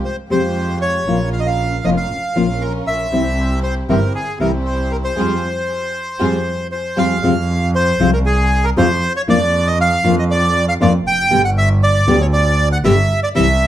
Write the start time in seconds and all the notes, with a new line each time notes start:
0.05 C5
0.30 F2 C3 F3 G#3 C4 F4 G4 C5
0.81 C#5
1.07 A#1 F3 A#3 C#4 F4 A#4
1.33 F5
1.40 D#5
1.47 F5
1.84 F1 F3 A#3 C#4 F4 A#4 D#5
1.97 F5
2.36 A#1 F3 A#3 C#4 F4 A#4
2.61 A#4
2.87 A#1 E5
3.12 C2 C3 E3 G3 C4 E4 G4
3.63 C5
3.89 G1 C3 E3 G3 C4 E4 G4 A#4
4.15 G#4
4.40 C2 C3 E3 G3 C4 E4 G4 A#4
4.66 C5
4.91 A#4
5.04 C5
5.17 F2 G3 G#3 C4 F4 G4 G#4
6.19 F2 G3 G#3 C4 F4 G4 G#4
6.72 C5
6.97 F2 G3 G#3 C4 F4 G4 G#4 F5
7.23 F2 C3 F3 G#3 C4 F4
7.75 C5
8.00 C2 C3 F3 G#3 C4 F4
8.13 A#4
8.26 G#4
8.64 A#4
8.76 F2 C3 F3 G#3 C4 F4 C5
9.16 C#5
9.28 F2 F3 A#3 D4 F4 D5
9.67 D#5
9.81 F5
10.04 F2 F3 A#3 D4 F4
10.19 D#5
10.31 D5
10.69 F5
10.81 F2 F3 A#3 D4 F4 D5
11.07 F1 G5
11.31 G1 B2 D3 G3 B3 G4
11.45 F#5
11.58 E5
11.83 D5
12.07 D2 B2 D3 G3 B3 G4
12.22 C#5
12.33 D5
12.72 F#5
12.84 G1 B2 D3 G3 B3 G4 E5
13.23 D5
13.35 C2 C3 E3 G3 C4 E4 E5